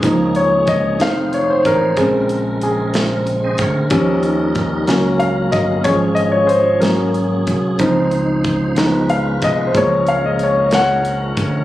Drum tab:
HH |xxxxxx|xxxxxx|xxxxxx|xxxxxx|
SD |---o--|---o--|---o--|---o--|
BD |o-o--o|o----o|o-o--o|o----o|

HH |xxxxxx|xxxxxx|
SD |---o--|---o--|
BD |o-o--o|o----o|